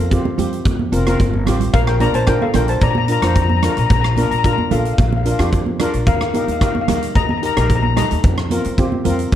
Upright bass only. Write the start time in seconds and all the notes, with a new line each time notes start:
Already playing: F2
0.38 F2
0.65 F2
0.92 F1
1.20 G1
1.46 A1
1.74 A#1
2.14 A#1
2.54 A#1
2.82 A#1
3.22 F2
3.77 A#1
3.90 A#1
4.31 A#1
4.71 A#1
4.98 A#1
5.39 F2
5.94 A#1
6.07 D#2
6.48 D#2
6.88 D#2
7.15 D#2
7.57 A#1
8.11 D#2
8.24 F2
8.65 F2
9.06 F2